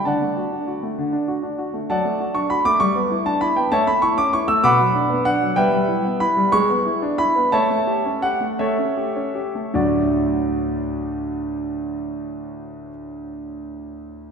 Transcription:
\new Staff \with { instrumentName = "Grand piano" } { \time 6/8 \key d \major \tempo 4. = 62 << { <d'' fis'' a''>2 r4 | <d'' fis'' a''>8. cis'''16 b''16 d'''16 cis'''8. a''16 b''16 g''16 | <cis'' e'' a''>16 b''16 cis'''16 d'''16 cis'''16 e'''16 <fis'' b'' d'''>4 fis''8 | <b' e'' g''>4 b''8 cis'''4 b''8 |
<cis'' e'' a''>4 fis''8 <a' cis'' e''>4. | <d, a, fis a d' fis' d''>2.~ | <d, a, fis a d' fis' d''>2. | } \\ { d16 a16 fis'16 d'16 fis'16 a16 d16 d'16 fis'16 d'16 fis'16 a16 | fis16 a16 fis'16 d'16 fis'16 a16 g16 b16 e'16 d'16 e'16 b16 | a16 a16 e'16 cis'16 e'16 a16 b,16 fis16 d'16 b16 d'16 fis16 | g16 g16 e'16 b16 e'16 g16 gis16 b16 e'16 d'16 e'16 b16 |
a16 a16 g'16 cis'16 g'16 a16 a16 cis'16 g'16 cis'16 g'16 a16 | r2. | r2. | } >> }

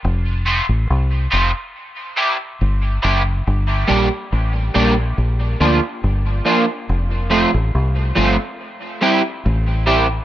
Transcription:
<<
  \new Staff \with { instrumentName = "Clean electric guitar" } { \time 4/4 \key f \major \tempo 4 = 70 r8 <f a c' f'>8 r8 <f a c' f'>8 r8 <g c' e' g'>8 r8 <g c' e' g'>8 | r8 <g bes d' g'>8 r8 <g bes d' g'>8 r8 <f bes d' f'>8 r8 <f bes d' f'>8 | r8 <f a c' f'>8 r8 <f a c' f'>8 r8 <g c' e' g'>8 r8 <g c' e' g'>8 | }
  \new Staff \with { instrumentName = "Fingered electric bass" } { \clef bass \time 4/4 \key f \major f,,8. a,,16 c,8 f,,16 r4 r16 g,,8 fis,,8 | g,,8 bes,,16 r16 a,,8 bes,,8 bes,,8 d,16 r16 g,,8 r8 | f,,8. a,,16 c,8 g,,16 r4 r16 a,,4 | }
>>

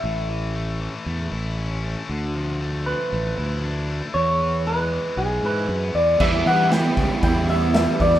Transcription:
<<
  \new Staff \with { instrumentName = "Clean electric guitar" } { \time 4/4 \key e \dorian \tempo 4 = 117 e''4. r2 r8 | r4. b'2~ b'8 | cis''4 b'4 gis'8 b'4 d''8 | e''8 fis''8 g''4 g''8 e''8 e''8 d''8 | }
  \new Staff \with { instrumentName = "Overdriven electric guitar" } { \time 4/4 \key e \dorian r1 | r1 | r1 | <e g b e'>1 | }
  \new Staff \with { instrumentName = "Distorted electric guitar" } { \clef bass \time 4/4 \key e \dorian a,8 e8 a8 e8 a8 e'8 cis'8 a8 | d8 f8 a8 f8 a8 e'8 d'8 a8 | e,8 e8 gis8 e8 gis8 e'8 b8 gis8 | e,8 e'8 b8 g8 e'8 b8 g8 e8 | }
  \new Staff \with { instrumentName = "Fingered electric bass" } { \clef bass \time 4/4 \key e \dorian a,,2 e,8 a,,4. | d,2 a,,8 d,4. | e,2 b,,8 gis,8 fis,8 e,8 | e,8 e4 cis,16 r16 e,4. e,8 | }
  \new DrumStaff \with { instrumentName = "Drums" } \drummode { \time 4/4 r4 r4 r4 r4 | r4 r4 r4 r4 | r4 r4 r4 r4 | <cymc bd>8 hho8 <hho sn>8 <hho bd>8 <hho bd>8 hho8 <hho sn>8 <hho bd>16 sn16 | }
>>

